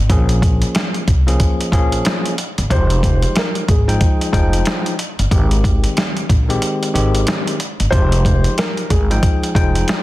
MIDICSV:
0, 0, Header, 1, 5, 480
1, 0, Start_track
1, 0, Key_signature, -4, "minor"
1, 0, Tempo, 652174
1, 71, Time_signature, 4, 2, 24, 8
1, 7380, End_track
2, 0, Start_track
2, 0, Title_t, "Upright piano"
2, 0, Program_c, 0, 0
2, 2001, Note_on_c, 0, 72, 101
2, 2447, Note_off_c, 0, 72, 0
2, 2491, Note_on_c, 0, 70, 80
2, 2698, Note_off_c, 0, 70, 0
2, 2717, Note_on_c, 0, 68, 74
2, 3404, Note_off_c, 0, 68, 0
2, 5818, Note_on_c, 0, 72, 110
2, 6275, Note_off_c, 0, 72, 0
2, 6320, Note_on_c, 0, 70, 85
2, 6532, Note_off_c, 0, 70, 0
2, 6552, Note_on_c, 0, 68, 78
2, 7242, Note_off_c, 0, 68, 0
2, 7380, End_track
3, 0, Start_track
3, 0, Title_t, "Tine electric piano"
3, 0, Program_c, 1, 4
3, 76, Note_on_c, 1, 53, 93
3, 79, Note_on_c, 1, 58, 80
3, 82, Note_on_c, 1, 61, 78
3, 84, Note_on_c, 1, 68, 92
3, 749, Note_off_c, 1, 53, 0
3, 750, Note_off_c, 1, 58, 0
3, 751, Note_off_c, 1, 61, 0
3, 753, Note_off_c, 1, 68, 0
3, 932, Note_on_c, 1, 53, 93
3, 935, Note_on_c, 1, 58, 80
3, 938, Note_on_c, 1, 61, 86
3, 940, Note_on_c, 1, 68, 98
3, 1246, Note_off_c, 1, 53, 0
3, 1247, Note_off_c, 1, 58, 0
3, 1249, Note_off_c, 1, 61, 0
3, 1250, Note_off_c, 1, 68, 0
3, 1263, Note_on_c, 1, 53, 94
3, 1266, Note_on_c, 1, 58, 83
3, 1268, Note_on_c, 1, 61, 91
3, 1271, Note_on_c, 1, 68, 105
3, 1717, Note_off_c, 1, 53, 0
3, 1718, Note_off_c, 1, 58, 0
3, 1720, Note_off_c, 1, 61, 0
3, 1721, Note_off_c, 1, 68, 0
3, 1987, Note_on_c, 1, 53, 84
3, 1989, Note_on_c, 1, 56, 85
3, 1992, Note_on_c, 1, 63, 88
3, 1994, Note_on_c, 1, 67, 102
3, 2664, Note_off_c, 1, 53, 0
3, 2665, Note_off_c, 1, 56, 0
3, 2667, Note_off_c, 1, 63, 0
3, 2668, Note_off_c, 1, 67, 0
3, 2850, Note_on_c, 1, 53, 91
3, 2853, Note_on_c, 1, 56, 85
3, 2856, Note_on_c, 1, 63, 91
3, 2859, Note_on_c, 1, 79, 93
3, 3165, Note_off_c, 1, 53, 0
3, 3166, Note_off_c, 1, 56, 0
3, 3167, Note_off_c, 1, 63, 0
3, 3169, Note_off_c, 1, 79, 0
3, 3181, Note_on_c, 1, 53, 96
3, 3184, Note_on_c, 1, 56, 85
3, 3186, Note_on_c, 1, 63, 90
3, 3189, Note_on_c, 1, 79, 107
3, 3636, Note_off_c, 1, 53, 0
3, 3637, Note_off_c, 1, 56, 0
3, 3639, Note_off_c, 1, 63, 0
3, 3640, Note_off_c, 1, 79, 0
3, 3907, Note_on_c, 1, 51, 90
3, 3910, Note_on_c, 1, 56, 81
3, 3912, Note_on_c, 1, 60, 78
3, 3915, Note_on_c, 1, 67, 98
3, 4584, Note_off_c, 1, 51, 0
3, 4585, Note_off_c, 1, 56, 0
3, 4587, Note_off_c, 1, 60, 0
3, 4588, Note_off_c, 1, 67, 0
3, 4776, Note_on_c, 1, 51, 91
3, 4779, Note_on_c, 1, 56, 91
3, 4781, Note_on_c, 1, 60, 85
3, 4785, Note_on_c, 1, 67, 98
3, 5087, Note_off_c, 1, 51, 0
3, 5089, Note_off_c, 1, 56, 0
3, 5090, Note_off_c, 1, 60, 0
3, 5092, Note_off_c, 1, 67, 0
3, 5105, Note_on_c, 1, 51, 96
3, 5108, Note_on_c, 1, 56, 81
3, 5111, Note_on_c, 1, 60, 84
3, 5113, Note_on_c, 1, 67, 106
3, 5558, Note_off_c, 1, 51, 0
3, 5560, Note_off_c, 1, 56, 0
3, 5561, Note_off_c, 1, 60, 0
3, 5562, Note_off_c, 1, 67, 0
3, 5831, Note_on_c, 1, 53, 83
3, 5834, Note_on_c, 1, 56, 81
3, 5837, Note_on_c, 1, 63, 82
3, 5840, Note_on_c, 1, 67, 100
3, 6506, Note_off_c, 1, 53, 0
3, 6508, Note_off_c, 1, 56, 0
3, 6509, Note_off_c, 1, 63, 0
3, 6510, Note_off_c, 1, 67, 0
3, 6701, Note_on_c, 1, 53, 93
3, 6705, Note_on_c, 1, 56, 83
3, 6707, Note_on_c, 1, 63, 80
3, 6710, Note_on_c, 1, 79, 99
3, 7010, Note_off_c, 1, 53, 0
3, 7012, Note_off_c, 1, 56, 0
3, 7013, Note_off_c, 1, 63, 0
3, 7015, Note_off_c, 1, 79, 0
3, 7028, Note_on_c, 1, 53, 88
3, 7030, Note_on_c, 1, 56, 91
3, 7033, Note_on_c, 1, 63, 89
3, 7036, Note_on_c, 1, 79, 106
3, 7380, Note_off_c, 1, 53, 0
3, 7380, Note_off_c, 1, 56, 0
3, 7380, Note_off_c, 1, 63, 0
3, 7380, Note_off_c, 1, 79, 0
3, 7380, End_track
4, 0, Start_track
4, 0, Title_t, "Upright bass"
4, 0, Program_c, 2, 32
4, 72, Note_on_c, 2, 34, 112
4, 458, Note_off_c, 2, 34, 0
4, 794, Note_on_c, 2, 36, 95
4, 986, Note_off_c, 2, 36, 0
4, 1269, Note_on_c, 2, 34, 94
4, 1463, Note_off_c, 2, 34, 0
4, 1901, Note_on_c, 2, 31, 84
4, 1975, Note_off_c, 2, 31, 0
4, 1992, Note_on_c, 2, 29, 106
4, 2379, Note_off_c, 2, 29, 0
4, 2714, Note_on_c, 2, 32, 90
4, 2906, Note_off_c, 2, 32, 0
4, 3189, Note_on_c, 2, 29, 92
4, 3383, Note_off_c, 2, 29, 0
4, 3821, Note_on_c, 2, 31, 86
4, 3895, Note_off_c, 2, 31, 0
4, 3912, Note_on_c, 2, 32, 109
4, 4299, Note_off_c, 2, 32, 0
4, 4634, Note_on_c, 2, 34, 101
4, 4826, Note_off_c, 2, 34, 0
4, 5115, Note_on_c, 2, 32, 87
4, 5307, Note_off_c, 2, 32, 0
4, 5741, Note_on_c, 2, 31, 83
4, 5815, Note_off_c, 2, 31, 0
4, 5832, Note_on_c, 2, 29, 107
4, 6219, Note_off_c, 2, 29, 0
4, 6554, Note_on_c, 2, 32, 100
4, 6746, Note_off_c, 2, 32, 0
4, 7030, Note_on_c, 2, 29, 86
4, 7224, Note_off_c, 2, 29, 0
4, 7380, End_track
5, 0, Start_track
5, 0, Title_t, "Drums"
5, 70, Note_on_c, 9, 36, 120
5, 71, Note_on_c, 9, 42, 97
5, 144, Note_off_c, 9, 36, 0
5, 145, Note_off_c, 9, 42, 0
5, 213, Note_on_c, 9, 42, 59
5, 287, Note_off_c, 9, 42, 0
5, 311, Note_on_c, 9, 36, 93
5, 315, Note_on_c, 9, 42, 70
5, 384, Note_off_c, 9, 36, 0
5, 389, Note_off_c, 9, 42, 0
5, 453, Note_on_c, 9, 42, 57
5, 527, Note_off_c, 9, 42, 0
5, 550, Note_on_c, 9, 42, 86
5, 557, Note_on_c, 9, 38, 108
5, 624, Note_off_c, 9, 42, 0
5, 631, Note_off_c, 9, 38, 0
5, 695, Note_on_c, 9, 42, 42
5, 769, Note_off_c, 9, 42, 0
5, 792, Note_on_c, 9, 36, 95
5, 793, Note_on_c, 9, 42, 79
5, 866, Note_off_c, 9, 36, 0
5, 866, Note_off_c, 9, 42, 0
5, 942, Note_on_c, 9, 42, 50
5, 1016, Note_off_c, 9, 42, 0
5, 1029, Note_on_c, 9, 42, 100
5, 1030, Note_on_c, 9, 36, 81
5, 1103, Note_off_c, 9, 42, 0
5, 1104, Note_off_c, 9, 36, 0
5, 1182, Note_on_c, 9, 42, 51
5, 1255, Note_off_c, 9, 42, 0
5, 1267, Note_on_c, 9, 36, 94
5, 1275, Note_on_c, 9, 42, 74
5, 1341, Note_off_c, 9, 36, 0
5, 1348, Note_off_c, 9, 42, 0
5, 1415, Note_on_c, 9, 42, 59
5, 1489, Note_off_c, 9, 42, 0
5, 1508, Note_on_c, 9, 42, 96
5, 1519, Note_on_c, 9, 38, 117
5, 1582, Note_off_c, 9, 42, 0
5, 1593, Note_off_c, 9, 38, 0
5, 1660, Note_on_c, 9, 42, 62
5, 1733, Note_off_c, 9, 42, 0
5, 1752, Note_on_c, 9, 42, 82
5, 1826, Note_off_c, 9, 42, 0
5, 1899, Note_on_c, 9, 42, 51
5, 1973, Note_off_c, 9, 42, 0
5, 1990, Note_on_c, 9, 36, 119
5, 1992, Note_on_c, 9, 42, 99
5, 2064, Note_off_c, 9, 36, 0
5, 2066, Note_off_c, 9, 42, 0
5, 2136, Note_on_c, 9, 42, 57
5, 2209, Note_off_c, 9, 42, 0
5, 2231, Note_on_c, 9, 36, 96
5, 2235, Note_on_c, 9, 42, 70
5, 2304, Note_off_c, 9, 36, 0
5, 2309, Note_off_c, 9, 42, 0
5, 2373, Note_on_c, 9, 42, 56
5, 2447, Note_off_c, 9, 42, 0
5, 2470, Note_on_c, 9, 42, 88
5, 2477, Note_on_c, 9, 38, 111
5, 2543, Note_off_c, 9, 42, 0
5, 2550, Note_off_c, 9, 38, 0
5, 2615, Note_on_c, 9, 42, 44
5, 2689, Note_off_c, 9, 42, 0
5, 2712, Note_on_c, 9, 36, 97
5, 2712, Note_on_c, 9, 42, 83
5, 2785, Note_off_c, 9, 36, 0
5, 2785, Note_off_c, 9, 42, 0
5, 2862, Note_on_c, 9, 42, 50
5, 2936, Note_off_c, 9, 42, 0
5, 2949, Note_on_c, 9, 42, 99
5, 2950, Note_on_c, 9, 36, 85
5, 3023, Note_off_c, 9, 36, 0
5, 3023, Note_off_c, 9, 42, 0
5, 3101, Note_on_c, 9, 42, 51
5, 3175, Note_off_c, 9, 42, 0
5, 3187, Note_on_c, 9, 36, 100
5, 3195, Note_on_c, 9, 42, 73
5, 3261, Note_off_c, 9, 36, 0
5, 3269, Note_off_c, 9, 42, 0
5, 3335, Note_on_c, 9, 42, 58
5, 3409, Note_off_c, 9, 42, 0
5, 3426, Note_on_c, 9, 42, 98
5, 3437, Note_on_c, 9, 38, 111
5, 3500, Note_off_c, 9, 42, 0
5, 3511, Note_off_c, 9, 38, 0
5, 3578, Note_on_c, 9, 42, 65
5, 3652, Note_off_c, 9, 42, 0
5, 3672, Note_on_c, 9, 42, 80
5, 3746, Note_off_c, 9, 42, 0
5, 3820, Note_on_c, 9, 42, 51
5, 3894, Note_off_c, 9, 42, 0
5, 3910, Note_on_c, 9, 36, 117
5, 3912, Note_on_c, 9, 42, 101
5, 3984, Note_off_c, 9, 36, 0
5, 3986, Note_off_c, 9, 42, 0
5, 4056, Note_on_c, 9, 42, 60
5, 4130, Note_off_c, 9, 42, 0
5, 4151, Note_on_c, 9, 36, 98
5, 4156, Note_on_c, 9, 42, 68
5, 4225, Note_off_c, 9, 36, 0
5, 4230, Note_off_c, 9, 42, 0
5, 4295, Note_on_c, 9, 42, 58
5, 4369, Note_off_c, 9, 42, 0
5, 4393, Note_on_c, 9, 42, 89
5, 4400, Note_on_c, 9, 38, 117
5, 4467, Note_off_c, 9, 42, 0
5, 4474, Note_off_c, 9, 38, 0
5, 4538, Note_on_c, 9, 42, 42
5, 4612, Note_off_c, 9, 42, 0
5, 4633, Note_on_c, 9, 36, 98
5, 4635, Note_on_c, 9, 42, 81
5, 4706, Note_off_c, 9, 36, 0
5, 4708, Note_off_c, 9, 42, 0
5, 4784, Note_on_c, 9, 42, 50
5, 4858, Note_off_c, 9, 42, 0
5, 4872, Note_on_c, 9, 42, 99
5, 4946, Note_off_c, 9, 42, 0
5, 5024, Note_on_c, 9, 42, 50
5, 5098, Note_off_c, 9, 42, 0
5, 5119, Note_on_c, 9, 42, 74
5, 5193, Note_off_c, 9, 42, 0
5, 5259, Note_on_c, 9, 42, 58
5, 5333, Note_off_c, 9, 42, 0
5, 5349, Note_on_c, 9, 42, 92
5, 5360, Note_on_c, 9, 38, 113
5, 5423, Note_off_c, 9, 42, 0
5, 5434, Note_off_c, 9, 38, 0
5, 5501, Note_on_c, 9, 42, 64
5, 5575, Note_off_c, 9, 42, 0
5, 5592, Note_on_c, 9, 42, 84
5, 5666, Note_off_c, 9, 42, 0
5, 5740, Note_on_c, 9, 42, 51
5, 5813, Note_off_c, 9, 42, 0
5, 5831, Note_on_c, 9, 36, 118
5, 5834, Note_on_c, 9, 42, 99
5, 5905, Note_off_c, 9, 36, 0
5, 5907, Note_off_c, 9, 42, 0
5, 5978, Note_on_c, 9, 42, 58
5, 6051, Note_off_c, 9, 42, 0
5, 6072, Note_on_c, 9, 36, 100
5, 6077, Note_on_c, 9, 42, 69
5, 6145, Note_off_c, 9, 36, 0
5, 6151, Note_off_c, 9, 42, 0
5, 6214, Note_on_c, 9, 42, 56
5, 6288, Note_off_c, 9, 42, 0
5, 6313, Note_on_c, 9, 42, 87
5, 6320, Note_on_c, 9, 38, 110
5, 6387, Note_off_c, 9, 42, 0
5, 6394, Note_off_c, 9, 38, 0
5, 6458, Note_on_c, 9, 42, 43
5, 6531, Note_off_c, 9, 42, 0
5, 6553, Note_on_c, 9, 36, 93
5, 6553, Note_on_c, 9, 42, 81
5, 6626, Note_off_c, 9, 36, 0
5, 6627, Note_off_c, 9, 42, 0
5, 6704, Note_on_c, 9, 42, 51
5, 6778, Note_off_c, 9, 42, 0
5, 6791, Note_on_c, 9, 36, 83
5, 6792, Note_on_c, 9, 42, 99
5, 6865, Note_off_c, 9, 36, 0
5, 6865, Note_off_c, 9, 42, 0
5, 6944, Note_on_c, 9, 42, 52
5, 7017, Note_off_c, 9, 42, 0
5, 7029, Note_on_c, 9, 36, 98
5, 7038, Note_on_c, 9, 42, 72
5, 7102, Note_off_c, 9, 36, 0
5, 7112, Note_off_c, 9, 42, 0
5, 7179, Note_on_c, 9, 42, 59
5, 7253, Note_off_c, 9, 42, 0
5, 7270, Note_on_c, 9, 42, 92
5, 7281, Note_on_c, 9, 38, 114
5, 7344, Note_off_c, 9, 42, 0
5, 7355, Note_off_c, 9, 38, 0
5, 7380, End_track
0, 0, End_of_file